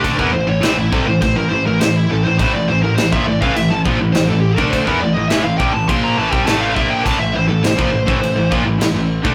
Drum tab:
CC |x---x---x---x---|x---x---x---x---|x---x---x---x---|x---x---x---x---|
SD |----o-------o---|----o-------o---|----o-------o---|----o-------o---|
BD |oo----o-o-------|o----o-o--o----o|oo----o-o--o--o-|o----o-o--o----o|